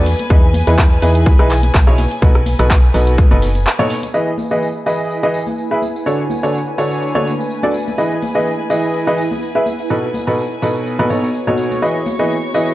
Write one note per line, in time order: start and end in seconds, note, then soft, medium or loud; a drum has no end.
0.00 0.15 E2 loud
0.00 4.13 B4 medium
0.00 4.13 G#5 medium
0.06 open hi-hat loud
0.06 tambourine medium
0.06 shaker medium
0.19 closed hi-hat medium
0.19 tambourine soft
0.19 high conga medium
0.19 shaker soft
0.30 0.63 E2 loud
0.30 0.46 E3 medium
0.30 0.46 D#4 medium
0.30 0.46 E4 medium
0.30 0.46 G#4 medium
0.30 0.46 B4 medium
0.30 kick loud
0.30 closed hi-hat medium
0.30 tambourine soft
0.30 shaker soft
0.43 shaker soft
0.54 open hi-hat medium
0.54 tambourine medium
0.54 high conga medium
0.54 shaker medium
0.67 0.98 E2 medium
0.67 0.81 E3 medium
0.67 0.81 D#4 medium
0.67 0.81 E4 medium
0.67 0.81 G#4 medium
0.67 0.81 B4 medium
0.67 closed hi-hat medium
0.67 tambourine soft
0.67 shaker soft
0.78 kick loud
0.78 clap loud
0.78 closed hi-hat medium
0.78 shaker soft
0.91 shaker soft
1.02 1.35 E2 medium
1.02 1.36 E3 medium
1.02 1.36 D#4 medium
1.02 1.36 E4 medium
1.02 1.36 G#4 medium
1.02 1.36 B4 medium
1.02 open hi-hat loud
1.02 tambourine medium
1.02 shaker medium
1.15 closed hi-hat medium
1.15 tambourine soft
1.15 shaker soft
1.26 kick loud
1.26 closed hi-hat medium
1.26 tambourine soft
1.26 shaker soft
1.39 1.70 B1 loud
1.39 1.53 E3 loud
1.39 1.53 D#4 medium
1.39 1.53 E4 medium
1.39 1.53 G#4 medium
1.39 1.53 B4 loud
1.39 cross-stick medium
1.39 shaker soft
1.50 clap medium
1.50 open hi-hat loud
1.50 tambourine medium
1.50 shaker medium
1.63 closed hi-hat medium
1.63 tambourine soft
1.63 high conga medium
1.63 shaker soft
1.74 2.07 B1 loud
1.74 kick loud
1.74 clap loud
1.74 closed hi-hat medium
1.74 tambourine soft
1.74 shaker soft
1.87 1.97 B2 medium
1.87 1.97 D#4 medium
1.87 1.97 E4 medium
1.87 1.97 G#4 medium
1.87 1.97 C#5 loud
1.87 cross-stick medium
1.87 shaker soft
1.98 open hi-hat medium
1.98 tambourine medium
1.98 high conga medium
1.98 shaker medium
2.11 closed hi-hat medium
2.11 tambourine soft
2.11 shaker soft
2.22 2.55 B1 loud
2.22 2.38 B2 medium
2.22 2.38 D#4 medium
2.22 2.38 F#4 medium
2.22 2.38 A4 medium
2.22 2.38 B4 medium
2.22 kick loud
2.22 closed hi-hat medium
2.22 shaker soft
2.35 cross-stick medium
2.35 shaker soft
2.46 open hi-hat loud
2.46 tambourine medium
2.46 high conga medium
2.46 shaker medium
2.59 2.90 B1 medium
2.59 2.73 B2 medium
2.59 2.73 D#4 medium
2.59 2.73 F#4 medium
2.59 2.73 A4 medium
2.59 2.73 B4 medium
2.59 cross-stick medium
2.59 closed hi-hat medium
2.59 tambourine soft
2.59 shaker soft
2.70 kick loud
2.70 clap loud
2.70 closed hi-hat medium
2.70 shaker soft
2.83 shaker soft
2.94 3.27 B1 medium
2.94 3.28 B2 medium
2.94 3.28 D#4 medium
2.94 3.28 F#4 medium
2.94 3.28 A4 medium
2.94 3.28 B4 medium
2.94 open hi-hat loud
2.94 tambourine loud
2.94 shaker medium
3.07 closed hi-hat medium
3.07 tambourine soft
3.07 shaker soft
3.18 kick loud
3.18 closed hi-hat medium
3.18 tambourine soft
3.18 shaker soft
3.31 3.66 F#1 loud
3.31 3.45 B2 loud
3.31 3.45 D#4 medium
3.31 3.45 F#4 medium
3.31 3.45 A4 medium
3.31 3.45 B4 loud
3.31 high conga medium
3.31 shaker soft
3.42 open hi-hat loud
3.42 tambourine medium
3.42 shaker medium
3.55 closed hi-hat medium
3.55 tambourine medium
3.55 shaker soft
3.66 clap loud
3.66 closed hi-hat medium
3.66 tambourine soft
3.66 shaker soft
3.79 3.93 B2 medium
3.79 3.93 D#4 medium
3.79 3.93 F#4 medium
3.79 3.93 A4 medium
3.79 3.93 C#5 loud
3.79 high conga medium
3.79 shaker soft
3.90 open hi-hat loud
3.90 tambourine medium
3.90 shaker medium
4.03 closed hi-hat medium
4.03 tambourine medium
4.03 high conga medium
4.03 shaker soft
4.14 4.30 E3 medium
4.14 4.30 E4 medium
4.14 6.60 E4 medium
4.14 4.30 G#4 medium
4.14 4.30 B4 medium
4.14 11.83 B4 medium
4.14 4.30 D#5 medium
4.14 11.83 G#5 medium
4.14 tambourine soft
4.14 shaker soft
4.38 open hi-hat medium
4.38 tambourine medium
4.38 high conga medium
4.50 4.65 E3 medium
4.50 4.65 E4 medium
4.50 4.65 G#4 medium
4.50 4.65 B4 medium
4.50 4.65 D#5 medium
4.50 tambourine soft
4.62 tambourine soft
4.75 shaker soft
4.86 5.20 E3 medium
4.86 5.20 E4 medium
4.86 5.20 G#4 medium
4.86 5.20 B4 medium
4.86 5.20 D#5 medium
4.86 tambourine medium
4.90 6.60 B4 medium
4.90 6.60 F#5 medium
4.99 tambourine soft
5.10 tambourine soft
5.23 5.37 E3 medium
5.23 5.37 E4 medium
5.23 5.37 G#4 medium
5.23 5.37 B4 medium
5.23 5.37 D#5 medium
5.34 tambourine medium
5.47 tambourine soft
5.47 high conga medium
5.58 tambourine soft
5.71 5.81 E4 medium
5.71 5.81 G#4 medium
5.71 5.81 B4 medium
5.71 5.81 E5 medium
5.82 7.74 D4 medium
5.82 open hi-hat medium
5.82 tambourine medium
5.82 high conga medium
5.96 tambourine soft
6.06 6.22 D3 medium
6.06 6.22 D4 medium
6.06 6.22 F#4 medium
6.06 6.22 A4 medium
6.06 6.22 C#5 medium
6.06 tambourine soft
6.21 7.74 A3 medium
6.30 open hi-hat medium
6.30 tambourine medium
6.30 high conga medium
6.43 6.57 D3 medium
6.43 6.57 D4 medium
6.43 6.57 F#4 medium
6.43 6.57 A4 medium
6.43 6.57 C#5 medium
6.43 tambourine soft
6.55 tambourine soft
6.70 8.52 E5 medium
6.78 7.12 D3 medium
6.78 7.12 D4 medium
6.78 7.12 F#4 medium
6.78 7.12 A4 medium
6.78 7.12 C#5 medium
6.78 tambourine medium
6.91 tambourine soft
7.03 tambourine soft
7.15 7.29 D3 medium
7.15 7.29 D4 medium
7.15 7.29 F#4 medium
7.15 7.29 A4 medium
7.15 7.29 C#5 loud
7.15 high conga medium
7.26 open hi-hat medium
7.26 tambourine medium
7.40 tambourine soft
7.50 tambourine soft
7.63 7.73 D4 medium
7.63 7.73 F#4 medium
7.63 7.73 A4 medium
7.63 7.73 D5 medium
7.63 high conga medium
7.74 9.66 E4 medium
7.74 open hi-hat medium
7.74 tambourine medium
7.87 tambourine soft
7.87 high conga medium
7.98 8.14 E3 medium
7.98 8.14 E4 medium
7.98 8.14 G#4 medium
7.98 8.14 B4 medium
7.98 8.14 D#5 medium
7.98 tambourine soft
8.17 10.53 B4 medium
8.22 open hi-hat loud
8.22 tambourine medium
8.22 high conga medium
8.35 8.49 E3 medium
8.35 8.49 E4 medium
8.35 8.49 G#4 medium
8.35 8.49 B4 medium
8.35 8.49 D#5 medium
8.35 tambourine soft
8.47 tambourine soft
8.61 10.53 F#5 medium
8.70 9.04 E3 medium
8.70 9.04 E4 medium
8.70 9.04 G#4 medium
8.70 9.04 B4 medium
8.70 9.04 D#5 medium
8.70 open hi-hat loud
8.70 tambourine medium
8.83 tambourine soft
8.94 tambourine soft
9.07 9.21 E3 medium
9.07 9.21 E4 medium
9.07 9.21 G#4 medium
9.07 9.21 B4 medium
9.07 9.21 D#5 loud
9.18 open hi-hat loud
9.18 tambourine medium
9.31 tambourine soft
9.31 high conga medium
9.43 tambourine soft
9.55 9.65 E4 medium
9.55 9.65 G#4 medium
9.55 9.65 B4 medium
9.55 9.65 E5 medium
9.66 12.50 B3 medium
9.66 open hi-hat loud
9.66 tambourine medium
9.66 high conga medium
9.79 tambourine medium
9.84 12.41 C#5 medium
9.89 10.06 B2 medium
9.89 10.06 D#4 medium
9.89 10.06 F#4 medium
9.89 10.06 A4 medium
9.89 10.06 B4 medium
9.89 tambourine soft
10.14 open hi-hat loud
10.14 tambourine medium
10.14 high conga medium
10.14 shaker medium
10.27 10.41 B2 medium
10.27 10.41 D#4 medium
10.27 10.41 F#4 medium
10.27 12.48 F#4 medium
10.27 10.41 A4 medium
10.27 10.41 B4 medium
10.27 tambourine soft
10.39 tambourine soft
10.62 10.96 B2 medium
10.62 10.96 D#4 medium
10.62 10.96 F#4 medium
10.62 10.96 A4 medium
10.62 10.96 B4 medium
10.62 open hi-hat loud
10.62 tambourine medium
10.76 tambourine soft
10.86 tambourine soft
10.99 11.08 B2 medium
10.99 11.08 D#4 medium
10.99 11.08 F#4 medium
10.99 11.08 A4 medium
10.99 11.08 B4 medium
10.99 open hi-hat medium
10.99 high conga medium
11.10 11.26 B2 medium
11.10 11.26 D#4 medium
11.10 11.26 F#4 medium
11.10 11.26 A4 medium
11.10 11.26 C#5 medium
11.10 open hi-hat medium
11.10 tambourine medium
11.24 tambourine soft
11.34 tambourine soft
11.47 11.80 B2 medium
11.47 11.80 D#4 medium
11.47 11.80 F#4 medium
11.47 11.80 A4 medium
11.47 11.80 C#5 medium
11.47 high conga medium
11.58 open hi-hat loud
11.58 tambourine medium
11.71 tambourine soft
11.71 high conga medium
11.82 11.98 E3 medium
11.82 12.74 E4 medium
11.82 11.98 E4 medium
11.82 11.98 G#4 medium
11.82 11.98 B4 medium
11.82 12.74 C#5 medium
11.82 11.98 D#5 medium
11.82 12.74 C#6 medium
11.82 tambourine soft
12.06 open hi-hat medium
12.06 tambourine medium
12.06 high conga medium
12.06 shaker medium
12.19 12.33 E3 medium
12.19 12.33 E4 medium
12.19 12.33 G#4 medium
12.19 12.33 B4 medium
12.19 12.33 D#5 medium
12.19 tambourine soft
12.30 tambourine soft
12.54 12.74 E3 medium
12.54 12.74 E4 medium
12.54 12.74 G#4 medium
12.54 12.74 B4 medium
12.54 12.74 D#5 medium
12.54 open hi-hat medium
12.54 tambourine medium
12.54 shaker medium
12.67 tambourine soft